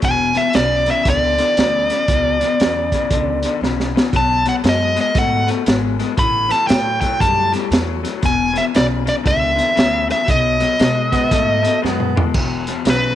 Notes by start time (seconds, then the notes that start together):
0.02 E1 E2 B2 G#5, kick, closed hi-hat
0.35 E2 B2 E5, snare, closed hi-hat
0.53 B1 E2 C#3 D5, snare, closed hi-hat
0.86 E2 C#3, snare, closed hi-hat
0.91 E5
1.05 C#2 E2 D3, kick, snare, closed hi-hat
1.10 D5
1.38 E2 D3, snare, closed hi-hat
1.57 D2 E2 C#3, snare, closed hi-hat
1.90 E2 C#3, snare, closed hi-hat
2.08 C#2 E2 B2, kick, closed hi-hat
2.40 E2 B2, snare, closed hi-hat
2.60 E2 C#3, snare, closed hi-hat
2.92 E2 C#3, kick, snare, closed hi-hat
3.10 C#2 E2 D3, kick, closed hi-hat
3.43 E2 D3, snare, closed hi-hat
3.61 B1 E2 C#3, snare
3.80 snare
3.95 E2 C#3, snare
4.13 B1 B2 F#3 A5, kick, closed hi-hat
4.46 B2 F#3 F#5, snare, closed hi-hat
4.64 F#2 B2 G#3, snare, closed hi-hat
4.69 D#5
4.96 B2 G#3, snare, closed hi-hat
5.01 D#5
5.15 G#2 B2 A3 F#5, kick, snare, closed hi-hat
5.47 B2 A3, snare, closed hi-hat
5.66 G#1 B2 G#3, snare, closed hi-hat
5.99 B2 G#3, snare, closed hi-hat
6.17 A1 A2 E3 B5, kick, closed hi-hat
6.49 A2 E3 A5, snare, closed hi-hat
6.67 A2 F#3 G5, snare, closed hi-hat
7.01 A2 F#3 G5, kick, snare, closed hi-hat
7.20 F#2 A2 G3 A5, kick, closed hi-hat
7.52 A2 G3, snare, closed hi-hat
7.71 E2 A2 F#3, snare, closed hi-hat
8.03 A2 F#3, snare, closed hi-hat
8.22 E1 E2 B2, kick, closed hi-hat
8.26 G#5
8.53 E2 B2, closed hi-hat
8.57 E5, snare
8.74 B1 E2 C#3 D5, snare, closed hi-hat
9.06 E2 C#3 D5, snare, closed hi-hat
9.23 C#2 E2 D3, kick, closed hi-hat
9.27 E5
9.55 E2 D3, closed hi-hat
9.60 snare
9.75 D2 E2 C#3, snare, closed hi-hat
10.07 E2 C#3, closed hi-hat
10.12 E5, snare
10.26 B1 B2 F#3, kick, closed hi-hat
10.31 D#5
10.60 B2 F#3, snare, closed hi-hat
10.79 B2 G#3, snare, closed hi-hat
11.12 B2 G#3 B3, kick, snare, closed hi-hat
11.31 G#2 B2 A3, kick, closed hi-hat
11.63 B2 A3, snare, closed hi-hat
11.82 F#2 B2 G#3 B3, snare
12.00 mid tom
12.16 B2 G#3, floor tom
12.34 E1 E2 B2, kick, crash
12.67 E2 B2, snare, closed hi-hat
12.85 B1 E2 C#3, snare, closed hi-hat
12.90 B4